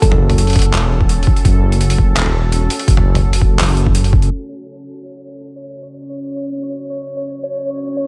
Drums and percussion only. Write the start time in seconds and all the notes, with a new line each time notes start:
0.02 kick, closed hi-hat
0.12 mid tom
0.30 mid tom, open hi-hat
0.38 closed hi-hat
0.47 open hi-hat
0.50 open hi-hat
0.53 open hi-hat
0.56 kick, open hi-hat
0.59 open hi-hat
0.62 open hi-hat
0.74 clap, closed hi-hat, mid tom
1.01 kick
1.09 closed hi-hat
1.23 open hi-hat
1.27 kick
1.36 closed hi-hat
1.45 kick, closed hi-hat
1.72 closed hi-hat
1.81 closed hi-hat
1.90 open hi-hat
1.98 kick
2.17 clap, closed hi-hat, mid tom
2.26 mid tom
2.52 closed hi-hat
2.70 open hi-hat
2.79 open hi-hat
2.88 kick, closed hi-hat
2.97 mid tom
3.15 mid tom, open hi-hat
3.33 open hi-hat
3.42 kick
3.59 clap, closed hi-hat, mid tom
3.62 closed hi-hat
3.64 closed hi-hat
3.66 closed hi-hat
3.69 closed hi-hat
3.70 closed hi-hat
3.73 closed hi-hat
3.75 closed hi-hat
3.77 closed hi-hat
3.87 kick
3.95 closed hi-hat
4.04 open hi-hat
4.13 kick
4.22 closed hi-hat